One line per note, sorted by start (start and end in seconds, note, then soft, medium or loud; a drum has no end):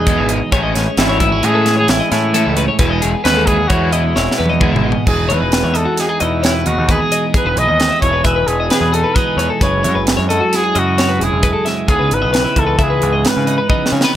0.00 0.17 E2 medium
0.00 0.53 B2 medium
0.00 0.30 G#4 medium
0.00 0.55 G#4 medium
0.00 0.18 D#5 medium
0.07 0.53 E2 medium
0.07 0.37 E3 medium
0.07 0.37 G#3 medium
0.07 0.53 G#3 medium
0.07 0.37 B3 medium
0.07 0.30 D#4 medium
0.07 0.38 E4 medium
0.07 kick loud
0.07 closed hi-hat medium
0.18 0.40 G#1 medium
0.18 0.29 E5 medium
0.29 0.51 D#4 medium
0.29 0.52 D#5 medium
0.29 closed hi-hat medium
0.52 0.74 A1 medium
0.52 0.82 E3 medium
0.52 0.99 G#3 medium
0.52 0.83 A3 medium
0.52 0.83 C#4 medium
0.52 0.75 C#4 medium
0.52 0.83 E4 medium
0.52 2.81 G#4 medium
0.52 0.63 C#5 medium
0.52 kick loud
0.52 closed hi-hat medium
0.63 0.74 D#5 medium
0.74 0.86 A1 medium
0.74 1.20 C#4 medium
0.74 0.98 C#5 medium
0.74 snare soft
0.74 closed hi-hat soft
0.97 1.41 G#1 medium
0.97 1.28 E3 medium
0.97 1.64 E3 medium
0.97 1.44 G#3 medium
0.97 1.28 A3 medium
0.97 1.28 C#4 medium
0.97 1.28 E4 medium
0.97 1.46 E4 medium
0.97 1.09 E5 medium
0.97 snare loud
0.97 closed hi-hat medium
1.09 1.20 C#5 medium
1.20 1.32 B3 medium
1.20 1.32 E5 medium
1.20 kick medium
1.20 closed hi-hat medium
1.32 1.65 C#4 soft
1.32 1.55 C#5 medium
1.43 1.86 A2 medium
1.43 1.73 E3 medium
1.43 1.87 G#3 medium
1.43 1.73 A3 medium
1.43 1.74 C#4 medium
1.43 1.74 E4 medium
1.43 1.77 G#4 medium
1.43 closed hi-hat medium
1.55 1.66 A4 medium
1.65 3.93 E3 medium
1.65 2.11 C#4 medium
1.65 1.76 E5 medium
1.65 snare soft
1.65 closed hi-hat soft
1.77 1.91 G#4 medium
1.77 1.99 C#5 medium
1.87 2.00 A1 medium
1.87 2.33 G#3 medium
1.87 2.10 E4 medium
1.87 snare medium
1.87 closed hi-hat medium
2.00 2.11 D#5 medium
2.11 2.44 A2 medium
2.11 2.33 C#4 medium
2.11 2.53 E4 medium
2.11 2.34 C#5 medium
2.11 snare soft
2.11 closed hi-hat medium
2.33 2.77 A2 medium
2.33 2.64 E3 medium
2.33 2.80 G#3 soft
2.33 2.64 A3 medium
2.33 2.55 C#4 medium
2.33 2.64 C#4 medium
2.33 2.65 E4 medium
2.33 2.57 A4 medium
2.33 closed hi-hat medium
2.47 2.68 C#2 medium
2.56 2.77 C#4 medium
2.56 2.68 B4 medium
2.56 closed hi-hat medium
2.68 2.79 C#5 medium
2.79 3.01 E1 medium
2.79 3.10 E3 medium
2.79 3.23 G#3 medium
2.79 3.10 G#3 medium
2.79 3.02 B3 medium
2.79 3.10 B3 medium
2.79 3.10 E4 medium
2.79 4.62 G#4 medium
2.79 2.90 B4 medium
2.79 kick loud
2.79 closed hi-hat medium
2.90 3.02 D#5 medium
3.02 3.14 E1 medium
3.02 3.48 B3 soft
3.02 3.24 G#4 medium
3.02 closed hi-hat medium
3.24 3.68 D#2 medium
3.24 3.55 E3 medium
3.24 3.69 G#3 soft
3.24 3.55 G#3 medium
3.24 3.55 B3 medium
3.24 3.56 E4 medium
3.24 3.35 B4 medium
3.24 3.48 B4 loud
3.24 snare medium
3.24 closed hi-hat medium
3.36 3.47 A4 medium
3.46 3.92 B3 medium
3.46 3.69 G#4 medium
3.46 3.58 B4 medium
3.46 kick medium
3.46 closed hi-hat medium
3.58 3.70 G#4 medium
3.68 4.13 E2 medium
3.68 4.00 E3 medium
3.68 4.15 G#3 medium
3.68 4.01 G#3 medium
3.68 4.01 B3 medium
3.68 3.94 F#4 medium
3.68 3.92 C#5 medium
3.68 kick loud
3.68 closed hi-hat medium
3.72 4.01 E4 medium
3.92 5.07 B2 soft
3.92 4.38 B3 medium
3.92 4.61 E4 medium
3.92 4.15 D#5 medium
3.92 closed hi-hat soft
4.16 4.27 E1 medium
4.16 4.60 G#3 medium
4.16 4.39 C#5 medium
4.16 snare soft
4.31 snare soft
4.38 4.71 E2 medium
4.38 4.62 B3 medium
4.38 4.50 B4 medium
4.46 4.72 D#5 medium
4.46 high tom medium
4.61 5.06 E2 medium
4.61 4.91 E3 medium
4.61 4.91 G#3 medium
4.61 5.07 G#3 soft
4.61 4.91 B3 medium
4.61 4.85 B3 soft
4.61 4.91 E4 medium
4.61 5.05 G#4 medium
4.61 kick loud
4.61 mid tom medium
4.72 4.95 G#1 medium
4.72 4.83 E5 medium
4.72 mid tom medium
4.83 5.08 B3 soft
4.83 5.06 D#5 medium
4.92 floor tom medium
5.06 5.32 E1 medium
5.06 6.89 E2 medium
5.06 5.30 G#3 soft
5.06 6.00 D#4 medium
5.06 5.34 G#4 medium
5.06 5.28 B4 medium
5.06 kick medium
5.06 crash medium
5.29 5.41 E2 medium
5.29 6.91 G#3 soft
5.29 5.78 B4 medium
5.29 5.40 C#5 medium
5.29 closed hi-hat soft
5.40 5.63 E1 medium
5.40 5.63 B4 medium
5.52 snare medium
5.52 closed hi-hat medium
5.63 5.85 E2 medium
5.63 5.74 C#5 medium
5.74 8.02 E3 medium
5.74 6.01 A4 medium
5.74 5.86 D#5 medium
5.74 closed hi-hat soft
5.85 6.09 F#4 soft
5.97 6.66 D#4 medium
5.97 6.22 G#4 medium
5.97 snare soft
5.97 closed hi-hat medium
6.09 6.21 G#4 medium
6.20 6.64 E2 medium
6.20 7.35 B2 soft
6.20 6.44 E4 medium
6.20 6.43 D#5 medium
6.20 closed hi-hat soft
6.43 6.68 E4 medium
6.43 6.55 C#5 medium
6.43 snare medium
6.43 closed hi-hat medium
6.55 6.66 B4 medium
6.66 6.77 D#2 medium
6.66 6.89 D#4 medium
6.66 6.93 F#4 medium
6.66 6.89 G#4 medium
6.66 closed hi-hat soft
6.78 6.99 D#2 medium
6.89 7.34 E2 medium
6.89 7.13 G#3 soft
6.89 7.33 D#4 medium
6.89 7.24 G#4 medium
6.89 7.01 B4 medium
6.89 kick medium
6.89 closed hi-hat medium
7.01 7.12 G#4 medium
7.12 7.35 G#3 medium
7.12 7.35 D#5 medium
7.12 closed hi-hat medium
7.34 9.15 E2 medium
7.34 7.58 G#3 soft
7.34 8.94 D#4 soft
7.34 7.46 G#4 medium
7.34 8.26 G#4 medium
7.34 7.60 B4 medium
7.34 kick loud
7.34 closed hi-hat medium
7.45 7.56 E1 medium
7.45 7.69 B4 medium
7.56 7.67 B1 medium
7.56 9.16 G#3 medium
7.56 8.01 D#5 medium
7.56 closed hi-hat medium
7.68 7.90 D#2 medium
7.68 7.79 D#5 medium
7.79 7.90 B4 medium
7.79 snare medium
7.79 closed hi-hat medium
7.91 8.12 E4 medium
8.01 8.24 E1 medium
8.01 10.30 E3 medium
8.01 8.26 C#5 medium
8.01 kick medium
8.01 closed hi-hat medium
8.13 8.24 B4 medium
8.24 8.46 E1 medium
8.24 9.18 G#4 medium
8.24 8.49 B4 medium
8.24 8.36 E5 medium
8.24 kick medium
8.24 closed hi-hat medium
8.36 8.59 B4 medium
8.47 8.69 E1 medium
8.47 9.62 B2 medium
8.47 8.70 G#4 medium
8.47 closed hi-hat soft
8.60 8.70 D#5 medium
8.70 8.95 G#4 medium
8.70 8.94 B4 medium
8.70 snare medium
8.70 closed hi-hat medium
8.81 9.03 E2 medium
8.92 9.16 D#4 medium
8.92 9.04 G#4 medium
8.92 9.18 A4 medium
8.92 closed hi-hat soft
9.04 9.15 B4 medium
9.15 9.62 E2 medium
9.15 9.40 G#3 soft
9.15 9.60 D#4 soft
9.15 9.64 G#4 medium
9.15 9.50 B4 medium
9.15 9.38 D#5 medium
9.15 kick medium
9.15 closed hi-hat medium
9.37 9.49 E2 medium
9.37 9.63 G#3 medium
9.37 9.50 C#5 medium
9.37 closed hi-hat medium
9.50 9.62 A4 medium
9.61 9.86 F#1 medium
9.61 11.42 F#2 medium
9.61 9.86 G#3 soft
9.61 10.54 E4 soft
9.61 11.90 G#4 medium
9.61 9.83 B4 medium
9.61 10.00 C#5 medium
9.61 kick medium
9.61 closed hi-hat medium
9.83 9.95 F#2 medium
9.83 11.43 G#3 medium
9.83 9.95 C#5 medium
9.83 closed hi-hat medium
9.95 10.17 F#1 medium
9.95 10.17 B4 medium
10.07 snare medium
10.07 closed hi-hat medium
10.17 10.40 F#2 medium
10.17 10.29 C#5 medium
10.29 11.87 F#3 medium
10.29 10.57 A4 medium
10.29 10.41 D#5 medium
10.29 closed hi-hat medium
10.40 10.64 F#4 medium
10.53 11.23 E4 medium
10.53 10.80 G#4 medium
10.53 snare soft
10.53 closed hi-hat medium
10.64 10.75 G#4 medium
10.75 11.18 F#2 medium
10.75 11.86 C#3 medium
10.75 11.25 F#4 medium
10.75 10.98 D#5 medium
10.75 closed hi-hat soft
10.98 11.10 C#5 medium
10.98 snare medium
10.98 closed hi-hat medium
11.09 11.20 B4 medium
11.20 11.31 E1 medium
11.20 11.44 E4 medium
11.20 11.43 G#4 medium
11.20 11.68 G#4 medium
11.20 closed hi-hat soft
11.32 11.53 E1 medium
11.43 11.86 F#2 medium
11.43 11.67 G#3 medium
11.43 11.90 E4 medium
11.43 11.53 B4 medium
11.43 kick medium
11.43 closed hi-hat medium
11.53 11.65 A4 medium
11.65 11.89 G#3 medium
11.65 11.88 E5 medium
11.65 snare soft
11.65 closed hi-hat medium
11.88 11.99 C#2 medium
11.88 12.57 C#3 medium
11.88 12.11 B3 soft
11.88 13.47 D#4 medium
11.88 12.79 E4 medium
11.88 12.00 G#4 medium
11.88 12.15 G#4 medium
11.88 kick medium
11.88 closed hi-hat medium
11.99 12.11 C#2 medium
11.99 12.22 B4 medium
12.11 12.22 G#1 medium
12.11 13.70 B3 medium
12.11 12.60 B4 medium
12.11 closed hi-hat soft
12.22 12.45 B1 medium
12.22 12.32 D#5 medium
12.33 12.44 B4 medium
12.33 snare medium
12.33 closed hi-hat medium
12.45 12.66 E4 medium
12.56 12.78 C#2 medium
12.56 14.16 E3 medium
12.56 12.85 A4 medium
12.56 kick medium
12.56 closed hi-hat medium
12.67 12.78 B4 medium
12.78 13.01 C#2 medium
12.78 13.71 E4 medium
12.78 12.91 E5 medium
12.78 kick medium
12.78 closed hi-hat medium
12.83 13.29 G#4 medium
12.90 13.13 B4 medium
13.02 13.24 C#2 medium
13.02 13.71 G#2 medium
13.02 closed hi-hat soft
13.13 13.25 D#5 medium
13.25 13.47 B4 medium
13.25 13.94 B4 medium
13.25 snare medium
13.25 closed hi-hat medium
13.37 13.58 C#3 medium
13.47 13.70 D#4 medium
13.47 13.58 G#4 medium
13.47 closed hi-hat soft
13.58 13.69 B4 medium
13.69 14.13 C#3 medium
13.69 13.91 B3 medium
13.69 14.16 D#4 soft
13.69 14.16 E4 soft
13.69 13.92 D#5 medium
13.69 kick medium
13.69 high tom medium
13.86 snare medium
13.92 14.04 C#3 medium
13.92 14.05 G#3 soft
13.92 14.04 C#5 medium
14.01 14.15 B4 medium
14.01 snare medium
14.05 14.16 B3 soft